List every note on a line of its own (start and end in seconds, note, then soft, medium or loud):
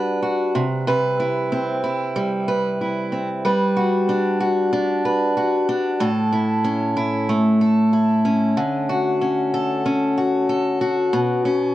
0.00 1.80 G3 medium
0.00 0.62 D4 medium
0.00 0.21 F#4 medium
0.00 0.87 B4 medium
0.22 0.62 F#4 medium
0.55 0.86 C3 medium
0.87 3.44 C3 medium
0.87 2.48 B4 medium
1.20 1.82 E4 medium
1.52 3.11 C4 medium
1.84 2.80 E4 medium
2.16 3.45 G3 medium
2.48 3.45 B4 medium
2.81 3.52 E4 medium
3.12 3.51 C4 soft
3.45 6.01 G3 medium
3.45 5.04 B4 medium
3.77 4.39 F#4 medium
4.09 4.72 D4 medium
4.41 5.35 F#4 medium
4.73 5.67 D4 medium
5.05 6.00 B4 medium
5.37 6.08 F#4 medium
5.69 6.08 D4 medium
6.00 8.57 A2 medium
6.00 7.61 A4 medium
6.33 6.95 E4 medium
6.64 8.25 C#4 medium
6.97 7.92 E4 medium
7.29 10.79 A3 medium
7.61 9.53 A4 medium
7.93 8.64 E4 medium
8.25 9.21 C#4 medium
8.57 11.13 D3 medium
8.89 10.17 F#4 medium
9.21 9.85 C#4 medium
9.54 10.48 A4 medium
9.86 11.45 C#4 medium
10.17 10.81 F#4 medium
10.49 11.20 A4 medium
10.81 11.45 F#4 medium
11.13 11.75 B2 medium
11.45 11.75 C#4 medium